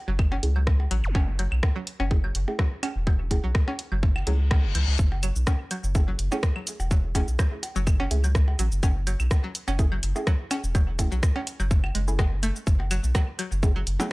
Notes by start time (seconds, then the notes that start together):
0.08 F#1 F#3
0.19 kick, claves
0.32 C#4, percussion blips
0.43 C#2 A3 C#4 E4 G#4, closed hi-hat
0.56 F#3, claves
0.67 kick, cross-stick
0.80 percussion blips
0.91 A1 F#3, closed hi-hat
1.04 F#1, zap
1.15 F#1 C#4, kick, percussion blips
1.39 F#3, closed hi-hat, claves
1.52 B1, claves
1.63 kick, cross-stick, percussion blips
1.76 F#3
1.87 closed hi-hat
2.00 F#1 C#4, percussion blips
2.11 A3 C#4 E4 G#4, kick
2.24 F#3, claves
2.35 F#1, closed hi-hat
2.48 A3 C#4 E4 G#4, percussion blips
2.59 F#3, kick, cross-stick
2.83 C#4, closed hi-hat, percussion blips, claves
2.96 E1
3.07 F#3, kick, claves
3.31 A3 C#4 E4 G#4, kick, closed hi-hat, percussion blips
3.44 B1 F#3
3.55 kick, cross-stick
3.68 C#4, percussion blips
3.79 closed hi-hat
3.92 F#1 F#3, claves
4.03 kick, reverse cymbal
4.16 percussion blips, claves
4.27 C#2 F#3 A3 C#4 E4 G#4, closed hi-hat
4.51 C#3, kick, cross-stick, percussion blips
4.64 F#1
4.75 C#2 E3, closed hi-hat, claves
4.88 C#2
4.99 F#1, kick, shaker
5.12 percussion blips
5.23 F#3, closed hi-hat, claves, shaker
5.36 B1, shaker
5.47 C#4, kick, cross-stick, percussion blips, shaker
5.71 F#3, closed hi-hat, claves, shaker
5.84 F#1, shaker
5.95 A3 C#4 E4 G#4, kick, percussion blips, shaker
6.08 F#3
6.19 F#1, closed hi-hat, shaker
6.32 A3 C#4 E4 G#4, percussion blips, shaker
6.43 kick, cross-stick, shaker
6.56 F#3, claves
6.67 closed hi-hat, shaker
6.80 E1, percussion blips, shaker
6.91 F#3, kick, shaker
7.15 A3 C#4 E4 G#4, kick, closed hi-hat, percussion blips, shaker
7.28 B1, shaker
7.39 F#3, kick, cross-stick, claves, shaker
7.63 closed hi-hat, percussion blips, shaker
7.76 F#1 F#3, shaker
7.87 kick, claves, shaker
8.00 C#4, percussion blips
8.11 C#2 A3 C#4 E4 G#4, closed hi-hat, shaker
8.24 F#3, claves, shaker
8.35 kick, cross-stick, shaker
8.48 percussion blips
8.59 A1 F#3, closed hi-hat, shaker
8.72 F#1, shaker
8.83 F#1 C#4, kick, percussion blips, shaker
9.07 F#3, closed hi-hat, claves, shaker
9.20 B1, claves, shaker
9.31 kick, cross-stick, percussion blips, shaker
9.44 F#3
9.55 closed hi-hat, shaker
9.68 F#1 C#4, percussion blips, shaker
9.79 A3 C#4 E4 G#4, kick, shaker
9.92 F#3, claves
10.03 F#1, closed hi-hat, shaker
10.16 A3 C#4 E4 G#4, percussion blips, shaker
10.27 F#3, kick, cross-stick, shaker
10.51 C#4, closed hi-hat, percussion blips, claves, shaker
10.64 E1, shaker
10.75 F#3, kick, claves, shaker
10.99 A3 C#4 E4 G#4, kick, closed hi-hat, percussion blips, shaker
11.12 B1 F#3, shaker
11.23 kick, cross-stick, shaker
11.36 C#4, percussion blips
11.47 closed hi-hat, shaker
11.60 F#1 F#3, claves, shaker
11.71 kick, shaker
11.84 percussion blips, claves
11.95 F#1 G#3, closed hi-hat, shaker
12.08 A3 C#4 E4 G#4, shaker
12.19 G#3, kick, cross-stick, percussion blips, shaker
12.43 A3, closed hi-hat, claves, shaker
12.56 shaker
12.67 F#1, kick, shaker
12.80 percussion blips
12.91 F#3, closed hi-hat, claves, shaker
13.04 B1, shaker
13.15 F#3, kick, cross-stick, percussion blips, shaker
13.39 F#3, closed hi-hat, claves, shaker
13.52 F#1, shaker
13.63 A3 C#4 E4 G#4, kick, percussion blips, shaker
13.76 F#3
13.87 F#1, closed hi-hat, shaker
14.00 F#3 A3 C#4 E4 G#4, percussion blips, shaker